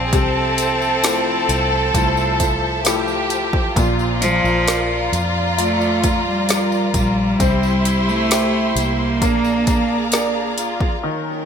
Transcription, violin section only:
0, 0, Header, 1, 2, 480
1, 0, Start_track
1, 0, Tempo, 909091
1, 67, Time_signature, 4, 2, 24, 8
1, 6047, End_track
2, 0, Start_track
2, 0, Title_t, "Violin section"
2, 0, Program_c, 0, 48
2, 32, Note_on_c, 0, 68, 80
2, 68, Note_off_c, 0, 68, 0
2, 70, Note_on_c, 0, 69, 113
2, 1503, Note_on_c, 0, 67, 101
2, 1509, Note_off_c, 0, 69, 0
2, 1964, Note_off_c, 0, 67, 0
2, 1986, Note_on_c, 0, 65, 100
2, 3907, Note_off_c, 0, 65, 0
2, 3907, Note_on_c, 0, 64, 96
2, 4846, Note_off_c, 0, 64, 0
2, 4867, Note_on_c, 0, 62, 79
2, 5335, Note_off_c, 0, 62, 0
2, 5341, Note_on_c, 0, 62, 76
2, 5567, Note_off_c, 0, 62, 0
2, 5587, Note_on_c, 0, 65, 72
2, 5827, Note_off_c, 0, 65, 0
2, 6047, End_track
0, 0, End_of_file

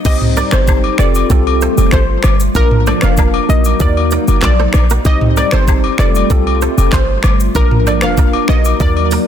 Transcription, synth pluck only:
0, 0, Header, 1, 2, 480
1, 0, Start_track
1, 0, Tempo, 625000
1, 40, Time_signature, 4, 2, 24, 8
1, 7120, End_track
2, 0, Start_track
2, 0, Title_t, "Synth pluck"
2, 0, Program_c, 0, 84
2, 44, Note_on_c, 0, 75, 95
2, 148, Note_off_c, 0, 75, 0
2, 285, Note_on_c, 0, 74, 82
2, 389, Note_off_c, 0, 74, 0
2, 408, Note_on_c, 0, 72, 75
2, 610, Note_off_c, 0, 72, 0
2, 765, Note_on_c, 0, 74, 84
2, 966, Note_off_c, 0, 74, 0
2, 1487, Note_on_c, 0, 72, 74
2, 1826, Note_off_c, 0, 72, 0
2, 1966, Note_on_c, 0, 70, 116
2, 2070, Note_off_c, 0, 70, 0
2, 2208, Note_on_c, 0, 74, 72
2, 2310, Note_off_c, 0, 74, 0
2, 2332, Note_on_c, 0, 77, 69
2, 2533, Note_off_c, 0, 77, 0
2, 2684, Note_on_c, 0, 75, 90
2, 2886, Note_off_c, 0, 75, 0
2, 2927, Note_on_c, 0, 74, 102
2, 3266, Note_off_c, 0, 74, 0
2, 3410, Note_on_c, 0, 74, 84
2, 3748, Note_off_c, 0, 74, 0
2, 3888, Note_on_c, 0, 75, 102
2, 3990, Note_off_c, 0, 75, 0
2, 4127, Note_on_c, 0, 74, 77
2, 4230, Note_off_c, 0, 74, 0
2, 4251, Note_on_c, 0, 72, 75
2, 4452, Note_off_c, 0, 72, 0
2, 4606, Note_on_c, 0, 74, 86
2, 4807, Note_off_c, 0, 74, 0
2, 5325, Note_on_c, 0, 72, 81
2, 5666, Note_off_c, 0, 72, 0
2, 5805, Note_on_c, 0, 70, 108
2, 5909, Note_off_c, 0, 70, 0
2, 6047, Note_on_c, 0, 74, 70
2, 6150, Note_off_c, 0, 74, 0
2, 6170, Note_on_c, 0, 77, 75
2, 6372, Note_off_c, 0, 77, 0
2, 6524, Note_on_c, 0, 75, 87
2, 6726, Note_off_c, 0, 75, 0
2, 6764, Note_on_c, 0, 74, 101
2, 7105, Note_off_c, 0, 74, 0
2, 7120, End_track
0, 0, End_of_file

